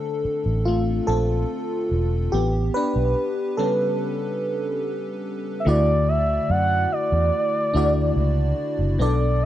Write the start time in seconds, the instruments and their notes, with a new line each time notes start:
Already playing: fm electric piano D3 A3 C4 D4 A4
0.25 muted fingered electric bass stroke
0.46 fingered electric bass A1
0.65 fm electric piano A3 F4
1.07 fingered electric bass A#1, fm electric piano C4 A4
1.91 fingered electric bass E1
2.32 fingered electric bass A1, fm electric piano B3 G4
2.74 fm electric piano D4 B4
2.96 fingered electric bass B1
3.57 fm electric piano C#3 G3 B3 C#4 A4
5.60 soft synth lead E5
5.65 fingered electric bass D2, fm electric piano D3 A3 E4 F#4 D5, soft synth lead D5
6.08 soft synth lead E5
6.50 fingered electric bass F#2, soft synth lead F#5
6.92 soft synth lead D5
7.12 fingered electric bass E2
7.74 fingered electric bass D2, fm electric piano A3 D4 E4 F#4 D5
8.16 fingered electric bass C#2
8.79 fingered electric bass F#1
8.98 fingered electric bass B1, fm electric piano B2 B3 D4 A4 D5, soft synth lead D5